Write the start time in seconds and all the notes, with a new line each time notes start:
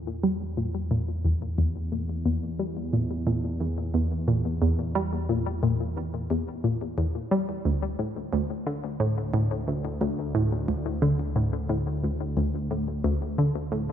Already playing: E2
0.23 G3
0.57 A#2
0.91 A#2
1.25 E2
1.58 E2
1.92 A#2
2.26 E2
2.59 G3
2.93 A#2
3.27 A#2
3.60 E2
3.94 E2
4.28 A#2
4.62 E2
4.95 G3
5.29 A#2
5.63 A#2
5.97 E2
6.30 E2
6.64 A#2
6.98 E2
7.31 G3
7.65 D2
7.99 A2
8.33 D2
8.66 D3
9.00 A2
9.34 A2
9.67 D2
10.01 D2
10.35 A2
10.68 D2
11.02 D3
11.36 A2
11.69 A2
12.03 D2
12.37 D2
12.71 A2
13.04 D2
13.38 D3
13.72 A2